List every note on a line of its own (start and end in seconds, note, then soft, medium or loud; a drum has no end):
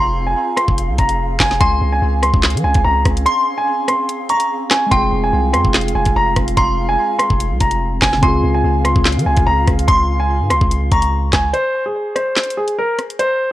0.00 0.35 F1 loud
0.00 1.57 C4 medium
0.00 1.57 F4 medium
0.00 7.93 G#4 medium
0.00 4.88 F5 medium
0.00 0.74 A#5 loud
0.00 0.25 C6 loud
0.27 0.55 G#5 medium
0.56 0.96 C6 medium
0.56 cross-stick loud
0.56 closed hi-hat medium
0.68 0.90 F1 loud
0.68 kick loud
0.78 closed hi-hat medium
0.89 0.98 C2 loud
0.98 1.38 F1 loud
0.98 1.38 A#5 medium
0.98 kick medium
0.98 closed hi-hat medium
1.09 closed hi-hat medium
1.40 1.60 F1 loud
1.40 1.57 G#5 medium
1.40 kick medium
1.40 cross-stick medium
1.40 snare loud
1.40 clap loud
1.40 open hi-hat medium
1.51 snare medium
1.60 1.81 C#2 loud
1.60 11.50 C4 medium
1.60 4.88 C#4 medium
1.60 2.81 G#5 loud
1.60 1.90 C6 loud
1.60 kick loud
1.60 closed hi-hat medium
1.81 2.01 C#2 loud
1.92 2.21 G#5 medium
2.02 2.32 C#2 loud
2.23 2.62 C6 medium
2.23 cross-stick loud
2.23 closed hi-hat medium
2.34 2.56 C#2 loud
2.34 kick loud
2.43 snare loud
2.43 clap medium
2.43 closed hi-hat medium
2.50 closed hi-hat medium
2.54 2.64 F3 loud
2.54 closed hi-hat medium
2.64 2.75 C#2 loud
2.64 2.82 G#5 medium
2.74 2.84 C#2 loud
2.74 kick medium
2.74 closed hi-hat medium
2.85 3.05 C#2 loud
2.85 3.02 A#5 loud
3.05 3.26 C#2 loud
3.05 kick loud
3.05 cross-stick loud
3.05 closed hi-hat medium
3.17 closed hi-hat medium
3.26 3.56 C6 loud
3.26 4.26 C6 loud
3.26 closed hi-hat medium
3.58 3.86 G#5 medium
3.88 4.27 C6 medium
3.88 cross-stick loud
3.88 closed hi-hat medium
4.09 closed hi-hat medium
4.29 4.69 A#5 medium
4.29 4.88 C#6 medium
4.29 closed hi-hat medium
4.40 closed hi-hat medium
4.71 4.88 G#5 medium
4.71 cross-stick medium
4.71 snare loud
4.71 clap loud
4.71 closed hi-hat medium
4.86 8.16 G#3 medium
4.86 8.18 C4 medium
4.91 5.11 F1 loud
4.91 7.94 F4 medium
4.91 8.20 F4 medium
4.91 7.98 F5 medium
4.91 6.12 G5 loud
4.91 5.21 C6 loud
4.91 kick loud
4.91 closed hi-hat medium
4.97 8.21 G#4 medium
5.12 5.32 F1 loud
5.24 5.52 G#5 medium
5.33 5.55 C2 loud
5.53 5.64 F2 loud
5.53 5.92 C6 medium
5.53 cross-stick loud
5.53 closed hi-hat medium
5.65 5.94 F1 loud
5.65 kick loud
5.74 snare loud
5.74 clap loud
5.74 closed hi-hat medium
5.81 closed hi-hat medium
5.88 closed hi-hat medium
5.95 6.06 F1 loud
5.95 6.13 G#5 medium
6.05 6.15 F1 loud
6.05 kick medium
6.05 closed hi-hat medium
6.16 6.36 F1 loud
6.16 6.33 A#5 medium
6.36 6.56 F1 loud
6.36 kick loud
6.36 cross-stick loud
6.36 closed hi-hat medium
6.48 closed hi-hat medium
6.57 6.97 F1 loud
6.57 7.36 A#5 loud
6.57 6.87 C6 loud
6.57 kick loud
6.57 closed hi-hat medium
6.89 7.17 G#5 medium
7.19 7.58 C6 medium
7.19 cross-stick loud
7.19 closed hi-hat medium
7.30 7.52 F1 loud
7.30 kick loud
7.40 closed hi-hat medium
7.51 7.60 C2 loud
7.60 8.00 F1 loud
7.60 8.00 A#5 medium
7.60 kick medium
7.60 closed hi-hat medium
7.71 closed hi-hat medium
8.02 8.22 F1 loud
8.02 8.19 G#5 medium
8.02 kick medium
8.02 cross-stick loud
8.02 snare loud
8.02 clap loud
8.02 open hi-hat medium
8.13 snare medium
8.17 11.47 C#3 medium
8.17 11.49 C4 medium
8.23 8.43 C#2 loud
8.23 11.50 F4 medium
8.23 11.51 F4 medium
8.23 11.50 G#4 medium
8.23 11.50 F5 medium
8.23 9.43 G#5 loud
8.23 8.52 C6 loud
8.23 kick loud
8.23 closed hi-hat medium
8.28 11.52 G#4 medium
8.43 8.63 C#2 loud
8.54 8.83 G#5 medium
8.64 8.94 C#2 loud
8.85 9.24 C6 medium
8.85 cross-stick loud
8.85 closed hi-hat medium
8.96 9.18 C#2 loud
8.96 kick loud
9.05 snare loud
9.05 clap medium
9.05 closed hi-hat medium
9.12 9.26 F3 loud
9.12 closed hi-hat medium
9.19 closed hi-hat medium
9.26 9.37 C#2 loud
9.26 9.44 G#5 medium
9.37 9.46 C#2 loud
9.37 kick medium
9.37 closed hi-hat medium
9.47 9.67 C#2 loud
9.47 9.64 A#5 loud
9.68 9.87 C#2 loud
9.68 kick loud
9.68 cross-stick loud
9.68 closed hi-hat medium
9.79 closed hi-hat medium
9.88 10.42 C#2 loud
9.88 10.18 C6 loud
9.88 10.88 C6 loud
9.88 kick loud
9.88 closed hi-hat medium
10.20 10.48 G#5 medium
10.40 10.52 G#2 loud
10.50 10.61 C#2 loud
10.50 10.89 C6 medium
10.50 cross-stick loud
10.50 closed hi-hat medium
10.61 10.90 C#2 loud
10.61 kick loud
10.71 closed hi-hat medium
10.92 11.31 C#2 loud
10.92 11.31 A#5 medium
10.92 11.50 C#6 medium
10.92 kick medium
10.92 closed hi-hat medium
11.02 closed hi-hat medium
11.33 11.53 C#2 loud
11.33 11.51 G#5 medium
11.33 kick loud
11.33 cross-stick loud
11.33 snare loud
11.33 clap medium
11.33 closed hi-hat medium
11.53 11.83 C5 loud
11.53 closed hi-hat medium
11.86 12.14 G#4 medium
12.15 12.55 C5 medium
12.15 cross-stick loud
12.15 closed hi-hat medium
12.36 snare loud
12.36 clap medium
12.36 closed hi-hat medium
12.43 closed hi-hat medium
12.50 closed hi-hat medium
12.57 12.75 G#4 medium
12.68 closed hi-hat medium
12.78 12.96 A#4 medium
12.99 cross-stick medium
12.99 closed hi-hat medium
13.10 closed hi-hat medium
13.19 13.49 C5 loud
13.19 closed hi-hat medium